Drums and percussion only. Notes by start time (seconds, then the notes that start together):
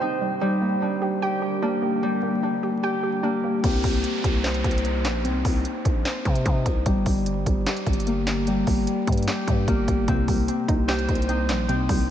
3.64 kick, closed hi-hat
3.84 kick, open hi-hat
4.04 closed hi-hat
4.24 kick, closed hi-hat
4.44 snare, clap, closed hi-hat
4.54 closed hi-hat
4.64 kick, closed hi-hat
4.71 closed hi-hat
4.78 closed hi-hat
4.85 closed hi-hat
5.05 snare, clap, closed hi-hat
5.25 closed hi-hat
5.45 kick, open hi-hat
5.65 closed hi-hat
5.85 kick, closed hi-hat
6.05 snare, clap, closed hi-hat
6.25 kick, closed hi-hat
6.35 closed hi-hat
6.46 kick, closed hi-hat
6.66 kick, closed hi-hat
6.86 kick, closed hi-hat
7.06 kick, open hi-hat
7.26 closed hi-hat
7.46 kick, closed hi-hat
7.66 snare, clap, closed hi-hat
7.77 closed hi-hat
7.86 kick, closed hi-hat
7.93 closed hi-hat
8.00 closed hi-hat
8.07 closed hi-hat
8.27 snare, clap, closed hi-hat
8.47 closed hi-hat
8.67 kick, open hi-hat
8.87 closed hi-hat
9.07 kick, closed hi-hat
9.12 closed hi-hat
9.17 closed hi-hat
9.22 closed hi-hat
9.28 snare, clap, closed hi-hat
9.48 kick, closed hi-hat
9.68 kick, closed hi-hat
9.88 kick, closed hi-hat
10.08 kick, closed hi-hat
10.28 kick, open hi-hat
10.48 closed hi-hat
10.68 kick, closed hi-hat
10.89 snare, clap, closed hi-hat
10.99 closed hi-hat
11.09 kick, closed hi-hat
11.15 closed hi-hat
11.22 closed hi-hat
11.29 closed hi-hat
11.49 snare, clap, closed hi-hat
11.69 closed hi-hat
11.89 kick, open hi-hat